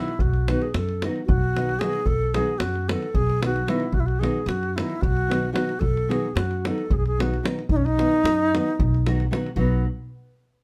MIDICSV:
0, 0, Header, 1, 5, 480
1, 0, Start_track
1, 0, Tempo, 536673
1, 170, Time_signature, 7, 3, 24, 8
1, 9515, End_track
2, 0, Start_track
2, 0, Title_t, "Alto flute"
2, 0, Program_c, 0, 73
2, 0, Note_on_c, 0, 64, 92
2, 186, Note_on_c, 0, 66, 83
2, 199, Note_off_c, 0, 64, 0
2, 557, Note_on_c, 0, 68, 73
2, 571, Note_off_c, 0, 66, 0
2, 668, Note_on_c, 0, 69, 84
2, 682, Note_off_c, 0, 68, 0
2, 925, Note_off_c, 0, 69, 0
2, 1122, Note_on_c, 0, 66, 105
2, 1604, Note_on_c, 0, 68, 109
2, 1617, Note_off_c, 0, 66, 0
2, 1843, Note_on_c, 0, 69, 110
2, 1857, Note_off_c, 0, 68, 0
2, 2095, Note_on_c, 0, 68, 104
2, 2108, Note_off_c, 0, 69, 0
2, 2312, Note_on_c, 0, 66, 99
2, 2326, Note_off_c, 0, 68, 0
2, 2582, Note_on_c, 0, 69, 89
2, 2595, Note_off_c, 0, 66, 0
2, 2818, Note_on_c, 0, 68, 106
2, 2831, Note_off_c, 0, 69, 0
2, 3067, Note_off_c, 0, 68, 0
2, 3084, Note_on_c, 0, 66, 95
2, 3299, Note_on_c, 0, 64, 90
2, 3313, Note_off_c, 0, 66, 0
2, 3525, Note_on_c, 0, 66, 107
2, 3539, Note_off_c, 0, 64, 0
2, 3578, Note_on_c, 0, 64, 82
2, 3591, Note_off_c, 0, 66, 0
2, 3633, Note_on_c, 0, 66, 95
2, 3647, Note_off_c, 0, 64, 0
2, 3752, Note_on_c, 0, 68, 92
2, 3765, Note_off_c, 0, 66, 0
2, 4007, Note_on_c, 0, 66, 86
2, 4021, Note_off_c, 0, 68, 0
2, 4258, Note_on_c, 0, 64, 83
2, 4271, Note_off_c, 0, 66, 0
2, 4485, Note_on_c, 0, 66, 110
2, 4498, Note_off_c, 0, 64, 0
2, 4946, Note_off_c, 0, 66, 0
2, 4952, Note_on_c, 0, 66, 93
2, 5184, Note_on_c, 0, 69, 97
2, 5197, Note_off_c, 0, 66, 0
2, 5456, Note_on_c, 0, 68, 92
2, 5470, Note_off_c, 0, 69, 0
2, 5682, Note_on_c, 0, 66, 86
2, 5696, Note_off_c, 0, 68, 0
2, 5967, Note_on_c, 0, 69, 90
2, 5981, Note_off_c, 0, 66, 0
2, 6198, Note_on_c, 0, 68, 94
2, 6212, Note_off_c, 0, 69, 0
2, 6229, Note_off_c, 0, 68, 0
2, 6235, Note_on_c, 0, 68, 89
2, 6299, Note_off_c, 0, 68, 0
2, 6324, Note_on_c, 0, 68, 89
2, 6447, Note_on_c, 0, 66, 80
2, 6461, Note_off_c, 0, 68, 0
2, 6661, Note_off_c, 0, 66, 0
2, 6886, Note_on_c, 0, 63, 109
2, 6944, Note_on_c, 0, 61, 83
2, 6958, Note_off_c, 0, 63, 0
2, 7022, Note_on_c, 0, 63, 123
2, 7035, Note_off_c, 0, 61, 0
2, 8117, Note_off_c, 0, 63, 0
2, 8548, Note_on_c, 0, 59, 82
2, 8799, Note_off_c, 0, 59, 0
2, 9515, End_track
3, 0, Start_track
3, 0, Title_t, "Nylon-string guitar"
3, 0, Program_c, 1, 24
3, 424, Note_on_c, 1, 51, 63
3, 430, Note_on_c, 1, 54, 62
3, 430, Note_on_c, 1, 59, 63
3, 435, Note_on_c, 1, 63, 61
3, 437, Note_on_c, 1, 66, 65
3, 568, Note_off_c, 1, 51, 0
3, 569, Note_off_c, 1, 54, 0
3, 571, Note_off_c, 1, 59, 0
3, 572, Note_off_c, 1, 63, 0
3, 574, Note_off_c, 1, 66, 0
3, 924, Note_on_c, 1, 54, 52
3, 926, Note_on_c, 1, 51, 55
3, 927, Note_on_c, 1, 59, 55
3, 931, Note_on_c, 1, 63, 49
3, 937, Note_on_c, 1, 66, 63
3, 1062, Note_off_c, 1, 54, 0
3, 1064, Note_off_c, 1, 51, 0
3, 1064, Note_off_c, 1, 59, 0
3, 1066, Note_off_c, 1, 63, 0
3, 1069, Note_off_c, 1, 66, 0
3, 1391, Note_on_c, 1, 51, 53
3, 1398, Note_on_c, 1, 54, 46
3, 1401, Note_on_c, 1, 59, 47
3, 1403, Note_on_c, 1, 63, 46
3, 1408, Note_on_c, 1, 66, 56
3, 1530, Note_off_c, 1, 51, 0
3, 1534, Note_off_c, 1, 54, 0
3, 1536, Note_off_c, 1, 59, 0
3, 1536, Note_off_c, 1, 63, 0
3, 1539, Note_off_c, 1, 66, 0
3, 1617, Note_on_c, 1, 51, 55
3, 1628, Note_on_c, 1, 54, 58
3, 1632, Note_on_c, 1, 59, 49
3, 1632, Note_on_c, 1, 63, 52
3, 1637, Note_on_c, 1, 66, 62
3, 1755, Note_off_c, 1, 51, 0
3, 1761, Note_off_c, 1, 54, 0
3, 1761, Note_off_c, 1, 59, 0
3, 1763, Note_off_c, 1, 63, 0
3, 1765, Note_off_c, 1, 66, 0
3, 2092, Note_on_c, 1, 51, 59
3, 2092, Note_on_c, 1, 54, 55
3, 2096, Note_on_c, 1, 59, 59
3, 2105, Note_on_c, 1, 63, 58
3, 2110, Note_on_c, 1, 66, 71
3, 2238, Note_off_c, 1, 51, 0
3, 2238, Note_off_c, 1, 54, 0
3, 2240, Note_off_c, 1, 59, 0
3, 2245, Note_off_c, 1, 63, 0
3, 2247, Note_off_c, 1, 66, 0
3, 2579, Note_on_c, 1, 51, 60
3, 2582, Note_on_c, 1, 54, 54
3, 2584, Note_on_c, 1, 59, 50
3, 2588, Note_on_c, 1, 63, 56
3, 2593, Note_on_c, 1, 66, 62
3, 2726, Note_off_c, 1, 51, 0
3, 2726, Note_off_c, 1, 54, 0
3, 2729, Note_off_c, 1, 59, 0
3, 2731, Note_off_c, 1, 63, 0
3, 2733, Note_off_c, 1, 66, 0
3, 3043, Note_on_c, 1, 51, 47
3, 3050, Note_on_c, 1, 54, 48
3, 3054, Note_on_c, 1, 63, 44
3, 3056, Note_on_c, 1, 59, 56
3, 3058, Note_on_c, 1, 66, 64
3, 3193, Note_off_c, 1, 51, 0
3, 3197, Note_off_c, 1, 54, 0
3, 3198, Note_off_c, 1, 63, 0
3, 3200, Note_off_c, 1, 59, 0
3, 3200, Note_off_c, 1, 66, 0
3, 3278, Note_on_c, 1, 51, 66
3, 3283, Note_on_c, 1, 54, 61
3, 3285, Note_on_c, 1, 59, 64
3, 3294, Note_on_c, 1, 63, 58
3, 3299, Note_on_c, 1, 66, 69
3, 3423, Note_off_c, 1, 51, 0
3, 3423, Note_off_c, 1, 54, 0
3, 3426, Note_off_c, 1, 59, 0
3, 3431, Note_off_c, 1, 63, 0
3, 3433, Note_off_c, 1, 66, 0
3, 3762, Note_on_c, 1, 51, 71
3, 3769, Note_on_c, 1, 54, 62
3, 3775, Note_on_c, 1, 59, 60
3, 3779, Note_on_c, 1, 63, 59
3, 3784, Note_on_c, 1, 66, 72
3, 3910, Note_off_c, 1, 51, 0
3, 3915, Note_off_c, 1, 54, 0
3, 3916, Note_off_c, 1, 59, 0
3, 3919, Note_off_c, 1, 63, 0
3, 3921, Note_off_c, 1, 66, 0
3, 4262, Note_on_c, 1, 51, 64
3, 4273, Note_on_c, 1, 59, 58
3, 4275, Note_on_c, 1, 54, 50
3, 4277, Note_on_c, 1, 63, 59
3, 4280, Note_on_c, 1, 66, 64
3, 4406, Note_off_c, 1, 51, 0
3, 4411, Note_off_c, 1, 59, 0
3, 4412, Note_off_c, 1, 54, 0
3, 4414, Note_off_c, 1, 63, 0
3, 4414, Note_off_c, 1, 66, 0
3, 4719, Note_on_c, 1, 51, 56
3, 4729, Note_on_c, 1, 54, 55
3, 4733, Note_on_c, 1, 59, 51
3, 4735, Note_on_c, 1, 63, 53
3, 4739, Note_on_c, 1, 66, 66
3, 4869, Note_off_c, 1, 51, 0
3, 4875, Note_off_c, 1, 54, 0
3, 4876, Note_off_c, 1, 59, 0
3, 4877, Note_off_c, 1, 63, 0
3, 4879, Note_off_c, 1, 66, 0
3, 4940, Note_on_c, 1, 51, 59
3, 4945, Note_on_c, 1, 59, 62
3, 4947, Note_on_c, 1, 54, 61
3, 4951, Note_on_c, 1, 63, 66
3, 4951, Note_on_c, 1, 66, 66
3, 5093, Note_off_c, 1, 51, 0
3, 5094, Note_off_c, 1, 54, 0
3, 5095, Note_off_c, 1, 59, 0
3, 5096, Note_off_c, 1, 63, 0
3, 5098, Note_off_c, 1, 66, 0
3, 5441, Note_on_c, 1, 51, 61
3, 5445, Note_on_c, 1, 54, 60
3, 5447, Note_on_c, 1, 59, 60
3, 5451, Note_on_c, 1, 63, 57
3, 5455, Note_on_c, 1, 66, 81
3, 5589, Note_off_c, 1, 51, 0
3, 5591, Note_off_c, 1, 54, 0
3, 5592, Note_off_c, 1, 59, 0
3, 5594, Note_off_c, 1, 63, 0
3, 5596, Note_off_c, 1, 66, 0
3, 5941, Note_on_c, 1, 51, 56
3, 5949, Note_on_c, 1, 54, 52
3, 5955, Note_on_c, 1, 63, 61
3, 5957, Note_on_c, 1, 59, 55
3, 5959, Note_on_c, 1, 66, 72
3, 6085, Note_off_c, 1, 51, 0
3, 6090, Note_off_c, 1, 54, 0
3, 6091, Note_off_c, 1, 59, 0
3, 6092, Note_off_c, 1, 63, 0
3, 6094, Note_off_c, 1, 66, 0
3, 6424, Note_on_c, 1, 51, 60
3, 6429, Note_on_c, 1, 54, 46
3, 6429, Note_on_c, 1, 59, 51
3, 6438, Note_on_c, 1, 63, 47
3, 6438, Note_on_c, 1, 66, 61
3, 6563, Note_off_c, 1, 51, 0
3, 6564, Note_off_c, 1, 59, 0
3, 6565, Note_off_c, 1, 54, 0
3, 6569, Note_off_c, 1, 63, 0
3, 6569, Note_off_c, 1, 66, 0
3, 6648, Note_on_c, 1, 51, 60
3, 6651, Note_on_c, 1, 54, 54
3, 6653, Note_on_c, 1, 59, 51
3, 6660, Note_on_c, 1, 63, 53
3, 6662, Note_on_c, 1, 66, 61
3, 6787, Note_off_c, 1, 51, 0
3, 6788, Note_off_c, 1, 54, 0
3, 6791, Note_off_c, 1, 59, 0
3, 6791, Note_off_c, 1, 66, 0
3, 6792, Note_off_c, 1, 63, 0
3, 7129, Note_on_c, 1, 51, 63
3, 7136, Note_on_c, 1, 54, 55
3, 7141, Note_on_c, 1, 59, 59
3, 7143, Note_on_c, 1, 63, 58
3, 7149, Note_on_c, 1, 66, 66
3, 7275, Note_off_c, 1, 51, 0
3, 7278, Note_off_c, 1, 54, 0
3, 7281, Note_off_c, 1, 59, 0
3, 7281, Note_off_c, 1, 63, 0
3, 7285, Note_off_c, 1, 66, 0
3, 7632, Note_on_c, 1, 51, 48
3, 7634, Note_on_c, 1, 54, 48
3, 7639, Note_on_c, 1, 63, 50
3, 7640, Note_on_c, 1, 59, 52
3, 7642, Note_on_c, 1, 66, 66
3, 7773, Note_off_c, 1, 51, 0
3, 7775, Note_off_c, 1, 54, 0
3, 7775, Note_off_c, 1, 63, 0
3, 7777, Note_off_c, 1, 59, 0
3, 7777, Note_off_c, 1, 66, 0
3, 8106, Note_on_c, 1, 51, 64
3, 8112, Note_on_c, 1, 54, 64
3, 8113, Note_on_c, 1, 59, 60
3, 8117, Note_on_c, 1, 63, 57
3, 8122, Note_on_c, 1, 66, 83
3, 8248, Note_off_c, 1, 51, 0
3, 8248, Note_off_c, 1, 54, 0
3, 8251, Note_off_c, 1, 59, 0
3, 8251, Note_off_c, 1, 63, 0
3, 8255, Note_off_c, 1, 66, 0
3, 8326, Note_on_c, 1, 51, 77
3, 8332, Note_on_c, 1, 54, 64
3, 8333, Note_on_c, 1, 59, 68
3, 8338, Note_on_c, 1, 63, 61
3, 8339, Note_on_c, 1, 66, 75
3, 8470, Note_off_c, 1, 51, 0
3, 8471, Note_off_c, 1, 54, 0
3, 8471, Note_off_c, 1, 59, 0
3, 8475, Note_off_c, 1, 63, 0
3, 8475, Note_off_c, 1, 66, 0
3, 8550, Note_on_c, 1, 59, 78
3, 8553, Note_on_c, 1, 63, 72
3, 8556, Note_on_c, 1, 66, 81
3, 8557, Note_on_c, 1, 54, 88
3, 8801, Note_off_c, 1, 59, 0
3, 8802, Note_off_c, 1, 63, 0
3, 8802, Note_off_c, 1, 66, 0
3, 8804, Note_off_c, 1, 54, 0
3, 9515, End_track
4, 0, Start_track
4, 0, Title_t, "Upright bass"
4, 0, Program_c, 2, 32
4, 180, Note_on_c, 2, 35, 96
4, 471, Note_off_c, 2, 35, 0
4, 663, Note_on_c, 2, 42, 98
4, 956, Note_off_c, 2, 42, 0
4, 1149, Note_on_c, 2, 35, 93
4, 1565, Note_off_c, 2, 35, 0
4, 1848, Note_on_c, 2, 35, 79
4, 2140, Note_off_c, 2, 35, 0
4, 2325, Note_on_c, 2, 42, 107
4, 2621, Note_off_c, 2, 42, 0
4, 2814, Note_on_c, 2, 35, 101
4, 3233, Note_off_c, 2, 35, 0
4, 3509, Note_on_c, 2, 35, 90
4, 3806, Note_off_c, 2, 35, 0
4, 3990, Note_on_c, 2, 42, 105
4, 4290, Note_off_c, 2, 42, 0
4, 4501, Note_on_c, 2, 35, 101
4, 4918, Note_off_c, 2, 35, 0
4, 5193, Note_on_c, 2, 35, 92
4, 5489, Note_off_c, 2, 35, 0
4, 5684, Note_on_c, 2, 42, 94
4, 5980, Note_off_c, 2, 42, 0
4, 6177, Note_on_c, 2, 35, 93
4, 6596, Note_off_c, 2, 35, 0
4, 6881, Note_on_c, 2, 35, 91
4, 7175, Note_off_c, 2, 35, 0
4, 7367, Note_on_c, 2, 42, 96
4, 7664, Note_off_c, 2, 42, 0
4, 7867, Note_on_c, 2, 35, 102
4, 8286, Note_off_c, 2, 35, 0
4, 8550, Note_on_c, 2, 35, 95
4, 8801, Note_off_c, 2, 35, 0
4, 9515, End_track
5, 0, Start_track
5, 0, Title_t, "Davul"
5, 72, Note_on_c, 9, 37, 27
5, 161, Note_off_c, 9, 37, 0
5, 171, Note_on_c, 9, 43, 92
5, 261, Note_off_c, 9, 43, 0
5, 300, Note_on_c, 9, 37, 29
5, 390, Note_off_c, 9, 37, 0
5, 431, Note_on_c, 9, 37, 70
5, 521, Note_off_c, 9, 37, 0
5, 551, Note_on_c, 9, 37, 26
5, 640, Note_off_c, 9, 37, 0
5, 666, Note_on_c, 9, 37, 75
5, 755, Note_off_c, 9, 37, 0
5, 793, Note_on_c, 9, 37, 27
5, 883, Note_off_c, 9, 37, 0
5, 914, Note_on_c, 9, 37, 75
5, 1004, Note_off_c, 9, 37, 0
5, 1034, Note_on_c, 9, 37, 21
5, 1124, Note_off_c, 9, 37, 0
5, 1152, Note_on_c, 9, 43, 100
5, 1241, Note_off_c, 9, 43, 0
5, 1400, Note_on_c, 9, 37, 62
5, 1489, Note_off_c, 9, 37, 0
5, 1512, Note_on_c, 9, 37, 33
5, 1602, Note_off_c, 9, 37, 0
5, 1619, Note_on_c, 9, 37, 73
5, 1709, Note_off_c, 9, 37, 0
5, 1728, Note_on_c, 9, 37, 26
5, 1817, Note_off_c, 9, 37, 0
5, 1840, Note_on_c, 9, 43, 88
5, 1929, Note_off_c, 9, 43, 0
5, 2097, Note_on_c, 9, 37, 70
5, 2186, Note_off_c, 9, 37, 0
5, 2326, Note_on_c, 9, 37, 86
5, 2416, Note_off_c, 9, 37, 0
5, 2464, Note_on_c, 9, 37, 27
5, 2553, Note_off_c, 9, 37, 0
5, 2588, Note_on_c, 9, 37, 82
5, 2678, Note_off_c, 9, 37, 0
5, 2705, Note_on_c, 9, 37, 25
5, 2795, Note_off_c, 9, 37, 0
5, 2812, Note_on_c, 9, 43, 86
5, 2902, Note_off_c, 9, 43, 0
5, 2948, Note_on_c, 9, 37, 28
5, 3037, Note_off_c, 9, 37, 0
5, 3064, Note_on_c, 9, 37, 78
5, 3153, Note_off_c, 9, 37, 0
5, 3183, Note_on_c, 9, 37, 32
5, 3273, Note_off_c, 9, 37, 0
5, 3294, Note_on_c, 9, 37, 72
5, 3384, Note_off_c, 9, 37, 0
5, 3397, Note_on_c, 9, 37, 30
5, 3487, Note_off_c, 9, 37, 0
5, 3513, Note_on_c, 9, 43, 85
5, 3602, Note_off_c, 9, 43, 0
5, 3650, Note_on_c, 9, 37, 25
5, 3740, Note_off_c, 9, 37, 0
5, 3788, Note_on_c, 9, 37, 61
5, 3877, Note_off_c, 9, 37, 0
5, 4013, Note_on_c, 9, 37, 72
5, 4102, Note_off_c, 9, 37, 0
5, 4141, Note_on_c, 9, 37, 26
5, 4230, Note_off_c, 9, 37, 0
5, 4274, Note_on_c, 9, 37, 75
5, 4363, Note_off_c, 9, 37, 0
5, 4380, Note_on_c, 9, 37, 26
5, 4469, Note_off_c, 9, 37, 0
5, 4493, Note_on_c, 9, 43, 91
5, 4583, Note_off_c, 9, 43, 0
5, 4620, Note_on_c, 9, 37, 24
5, 4709, Note_off_c, 9, 37, 0
5, 4753, Note_on_c, 9, 37, 72
5, 4843, Note_off_c, 9, 37, 0
5, 4970, Note_on_c, 9, 37, 72
5, 5059, Note_off_c, 9, 37, 0
5, 5090, Note_on_c, 9, 37, 29
5, 5179, Note_off_c, 9, 37, 0
5, 5204, Note_on_c, 9, 43, 83
5, 5293, Note_off_c, 9, 43, 0
5, 5342, Note_on_c, 9, 37, 25
5, 5432, Note_off_c, 9, 37, 0
5, 5468, Note_on_c, 9, 37, 56
5, 5557, Note_off_c, 9, 37, 0
5, 5695, Note_on_c, 9, 37, 83
5, 5784, Note_off_c, 9, 37, 0
5, 5821, Note_on_c, 9, 37, 29
5, 5911, Note_off_c, 9, 37, 0
5, 5949, Note_on_c, 9, 37, 74
5, 6039, Note_off_c, 9, 37, 0
5, 6063, Note_on_c, 9, 37, 24
5, 6153, Note_off_c, 9, 37, 0
5, 6175, Note_on_c, 9, 43, 93
5, 6264, Note_off_c, 9, 43, 0
5, 6311, Note_on_c, 9, 37, 26
5, 6400, Note_off_c, 9, 37, 0
5, 6443, Note_on_c, 9, 37, 74
5, 6532, Note_off_c, 9, 37, 0
5, 6561, Note_on_c, 9, 37, 31
5, 6651, Note_off_c, 9, 37, 0
5, 6668, Note_on_c, 9, 37, 78
5, 6758, Note_off_c, 9, 37, 0
5, 6786, Note_on_c, 9, 37, 28
5, 6875, Note_off_c, 9, 37, 0
5, 6880, Note_on_c, 9, 43, 84
5, 6969, Note_off_c, 9, 43, 0
5, 7031, Note_on_c, 9, 37, 27
5, 7120, Note_off_c, 9, 37, 0
5, 7147, Note_on_c, 9, 37, 66
5, 7237, Note_off_c, 9, 37, 0
5, 7383, Note_on_c, 9, 37, 83
5, 7472, Note_off_c, 9, 37, 0
5, 7644, Note_on_c, 9, 37, 63
5, 7733, Note_off_c, 9, 37, 0
5, 7765, Note_on_c, 9, 37, 20
5, 7854, Note_off_c, 9, 37, 0
5, 7866, Note_on_c, 9, 43, 92
5, 7955, Note_off_c, 9, 43, 0
5, 8000, Note_on_c, 9, 37, 23
5, 8089, Note_off_c, 9, 37, 0
5, 8108, Note_on_c, 9, 37, 68
5, 8197, Note_off_c, 9, 37, 0
5, 8230, Note_on_c, 9, 37, 30
5, 8319, Note_off_c, 9, 37, 0
5, 8345, Note_on_c, 9, 37, 68
5, 8435, Note_off_c, 9, 37, 0
5, 8465, Note_on_c, 9, 37, 24
5, 8555, Note_off_c, 9, 37, 0
5, 8566, Note_on_c, 9, 43, 62
5, 8655, Note_off_c, 9, 43, 0
5, 9515, End_track
0, 0, End_of_file